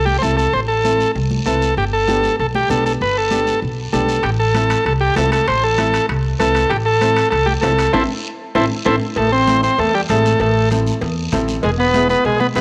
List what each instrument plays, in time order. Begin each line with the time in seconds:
Already playing: upright bass C2
0.05 transistor combo organ G4, high conga
0.19 upright piano C4 E4 A4, transistor combo organ A4 C5, high conga
0.23 upright bass C2, short guiro
0.37 transistor combo organ A4, short guiro
0.53 upright bass A1, transistor combo organ C5, long guiro
0.68 transistor combo organ A4
0.84 upright piano C4 E4 A4, high conga, short guiro
1.00 short guiro
1.15 upright bass C2, long guiro
1.31 high conga
1.46 upright bass C2, upright piano C4 E4 B4, transistor combo organ A4, high conga, short guiro
1.62 short guiro
1.77 upright bass G1, transistor combo organ G4, long guiro
1.93 transistor combo organ A4
2.07 upright piano B3 D4 G4, high conga, short guiro
2.24 short guiro
2.39 upright bass B1, transistor combo organ A4, long guiro
2.55 transistor combo organ G4, high conga
2.69 upright bass B1, upright piano B3 D4 G4, transistor combo organ A4, high conga, short guiro
2.86 transistor combo organ A4, short guiro
3.01 upright bass G1, transistor combo organ B4, long guiro
3.18 transistor combo organ A4
3.31 upright piano B3 D4 G4, high conga, short guiro
3.47 short guiro
3.62 upright bass B1, long guiro
3.92 upright bass B1, upright piano B3 D4 G4, transistor combo organ A4, high conga, short guiro
4.09 short guiro
4.23 upright bass A1, transistor combo organ G4, high timbale, long guiro
4.40 transistor combo organ A4
4.54 upright piano C4 E4 A4, high conga, high timbale, short guiro
4.70 high timbale, short guiro
4.85 upright bass C2, transistor combo organ A4, high timbale, long guiro
5.01 transistor combo organ G4
5.16 upright bass C2, upright piano C4 E4 A4, transistor combo organ A4, high conga, high timbale, low timbale, short guiro
5.32 transistor combo organ A4, high timbale, short guiro
5.48 upright bass A1, transistor combo organ C5, high timbale, long guiro
5.64 transistor combo organ A4
5.77 upright piano C4 E4 A4, high conga, high timbale, short guiro
5.94 high timbale, short guiro
6.09 upright bass C2, high timbale, long guiro
6.39 upright bass C2, upright piano C4 E4 B4, transistor combo organ A4, high conga, high timbale, short guiro
6.55 high timbale, short guiro
6.70 upright bass A1, transistor combo organ G4, high timbale, long guiro
6.86 transistor combo organ A4
7.01 upright piano C4 E4 C5, high conga, high timbale, short guiro
7.16 high timbale, short guiro
7.31 upright bass C2, transistor combo organ A4, high timbale, long guiro
7.46 transistor combo organ G4, high conga
7.61 upright bass C2, upright piano C4 E4 C5, transistor combo organ A4, high conga, high timbale, low timbale, short guiro
7.79 high timbale, short guiro
7.93 upright bass A1, upright piano C4 E4 A4, transistor combo organ E4 A4 C5, high conga, high timbale, long guiro
8.55 upright bass A1, upright piano C4 E4 A4, transistor combo organ E4 A4 C5, high conga, high timbale, long guiro
8.85 upright bass A1, upright piano C4 E4 A4, transistor combo organ E4 A4 C5, high conga, high timbale, long guiro
9.16 upright bass A1, clarinet A3, transistor combo organ A4, cowbell, long guiro
9.32 clarinet C4, transistor combo organ C5
9.47 upright piano C4 E4 A4, cowbell, high conga, short guiro
9.63 clarinet C4, transistor combo organ C5, short guiro
9.78 upright bass E2, clarinet A3, transistor combo organ A4, cowbell, long guiro
9.94 clarinet G3, transistor combo organ G4
10.09 upright bass A1, clarinet A3, upright piano C4 E4 G#4, transistor combo organ A4, cowbell, high conga, short guiro
10.25 short guiro
10.40 upright bass A1, clarinet A3, transistor combo organ A4, cowbell, long guiro
10.71 upright piano C4 E4 A4, cowbell, high conga, short guiro
10.87 short guiro
11.01 upright bass E2, cowbell, long guiro
11.32 upright bass A1, upright piano C4 E4 A4, cowbell, high conga, low conga, short guiro
11.48 short guiro
11.63 upright bass E1, clarinet G#3, transistor combo organ G#4, cowbell, long guiro
11.78 clarinet B3, transistor combo organ B4
11.93 upright piano B3 E4 G#4, cowbell, high conga, short guiro
12.09 clarinet B3, transistor combo organ B4, short guiro
12.25 upright bass B1, clarinet G#3, transistor combo organ G#4, cowbell, long guiro
12.40 clarinet B3, transistor combo organ B4, high conga
12.55 upright bass E1, upright piano B3 E4 G#4, clarinet B3, transistor combo organ B4, cowbell, high conga, short guiro